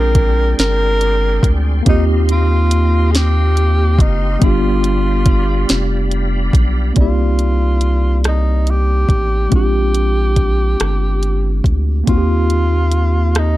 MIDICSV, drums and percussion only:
0, 0, Header, 1, 2, 480
1, 0, Start_track
1, 0, Key_signature, -3, "minor"
1, 0, Tempo, 851064
1, 1048, Time_signature, 6, 3, 24, 8
1, 7655, End_track
2, 0, Start_track
2, 0, Title_t, "Drums"
2, 85, Note_on_c, 9, 36, 91
2, 85, Note_on_c, 9, 42, 74
2, 141, Note_off_c, 9, 36, 0
2, 141, Note_off_c, 9, 42, 0
2, 332, Note_on_c, 9, 42, 84
2, 337, Note_on_c, 9, 38, 106
2, 389, Note_off_c, 9, 42, 0
2, 393, Note_off_c, 9, 38, 0
2, 570, Note_on_c, 9, 42, 48
2, 626, Note_off_c, 9, 42, 0
2, 806, Note_on_c, 9, 36, 96
2, 812, Note_on_c, 9, 42, 66
2, 862, Note_off_c, 9, 36, 0
2, 869, Note_off_c, 9, 42, 0
2, 1050, Note_on_c, 9, 42, 72
2, 1051, Note_on_c, 9, 36, 97
2, 1106, Note_off_c, 9, 42, 0
2, 1108, Note_off_c, 9, 36, 0
2, 1291, Note_on_c, 9, 42, 61
2, 1347, Note_off_c, 9, 42, 0
2, 1529, Note_on_c, 9, 42, 75
2, 1586, Note_off_c, 9, 42, 0
2, 1775, Note_on_c, 9, 42, 82
2, 1779, Note_on_c, 9, 38, 103
2, 1831, Note_off_c, 9, 42, 0
2, 1836, Note_off_c, 9, 38, 0
2, 2013, Note_on_c, 9, 42, 49
2, 2070, Note_off_c, 9, 42, 0
2, 2248, Note_on_c, 9, 36, 107
2, 2257, Note_on_c, 9, 42, 66
2, 2305, Note_off_c, 9, 36, 0
2, 2314, Note_off_c, 9, 42, 0
2, 2491, Note_on_c, 9, 36, 101
2, 2491, Note_on_c, 9, 42, 75
2, 2547, Note_off_c, 9, 36, 0
2, 2547, Note_off_c, 9, 42, 0
2, 2730, Note_on_c, 9, 42, 54
2, 2786, Note_off_c, 9, 42, 0
2, 2965, Note_on_c, 9, 42, 75
2, 2966, Note_on_c, 9, 36, 101
2, 3021, Note_off_c, 9, 42, 0
2, 3022, Note_off_c, 9, 36, 0
2, 3210, Note_on_c, 9, 42, 90
2, 3214, Note_on_c, 9, 38, 117
2, 3266, Note_off_c, 9, 42, 0
2, 3270, Note_off_c, 9, 38, 0
2, 3449, Note_on_c, 9, 42, 47
2, 3505, Note_off_c, 9, 42, 0
2, 3685, Note_on_c, 9, 36, 98
2, 3692, Note_on_c, 9, 42, 67
2, 3741, Note_off_c, 9, 36, 0
2, 3749, Note_off_c, 9, 42, 0
2, 3925, Note_on_c, 9, 42, 63
2, 3928, Note_on_c, 9, 36, 87
2, 3981, Note_off_c, 9, 42, 0
2, 3984, Note_off_c, 9, 36, 0
2, 4167, Note_on_c, 9, 42, 49
2, 4223, Note_off_c, 9, 42, 0
2, 4404, Note_on_c, 9, 42, 46
2, 4461, Note_off_c, 9, 42, 0
2, 4650, Note_on_c, 9, 42, 67
2, 4654, Note_on_c, 9, 37, 88
2, 4706, Note_off_c, 9, 42, 0
2, 4710, Note_off_c, 9, 37, 0
2, 4889, Note_on_c, 9, 42, 43
2, 4946, Note_off_c, 9, 42, 0
2, 5125, Note_on_c, 9, 36, 81
2, 5131, Note_on_c, 9, 42, 43
2, 5181, Note_off_c, 9, 36, 0
2, 5188, Note_off_c, 9, 42, 0
2, 5368, Note_on_c, 9, 36, 81
2, 5368, Note_on_c, 9, 42, 63
2, 5424, Note_off_c, 9, 42, 0
2, 5425, Note_off_c, 9, 36, 0
2, 5609, Note_on_c, 9, 42, 50
2, 5665, Note_off_c, 9, 42, 0
2, 5845, Note_on_c, 9, 36, 73
2, 5845, Note_on_c, 9, 42, 51
2, 5901, Note_off_c, 9, 42, 0
2, 5902, Note_off_c, 9, 36, 0
2, 6091, Note_on_c, 9, 42, 76
2, 6095, Note_on_c, 9, 37, 101
2, 6147, Note_off_c, 9, 42, 0
2, 6152, Note_off_c, 9, 37, 0
2, 6332, Note_on_c, 9, 42, 44
2, 6388, Note_off_c, 9, 42, 0
2, 6566, Note_on_c, 9, 36, 83
2, 6575, Note_on_c, 9, 42, 41
2, 6622, Note_off_c, 9, 36, 0
2, 6631, Note_off_c, 9, 42, 0
2, 6810, Note_on_c, 9, 36, 84
2, 6810, Note_on_c, 9, 42, 63
2, 6866, Note_off_c, 9, 36, 0
2, 6866, Note_off_c, 9, 42, 0
2, 7050, Note_on_c, 9, 42, 47
2, 7106, Note_off_c, 9, 42, 0
2, 7284, Note_on_c, 9, 42, 50
2, 7341, Note_off_c, 9, 42, 0
2, 7530, Note_on_c, 9, 42, 71
2, 7535, Note_on_c, 9, 37, 95
2, 7587, Note_off_c, 9, 42, 0
2, 7591, Note_off_c, 9, 37, 0
2, 7655, End_track
0, 0, End_of_file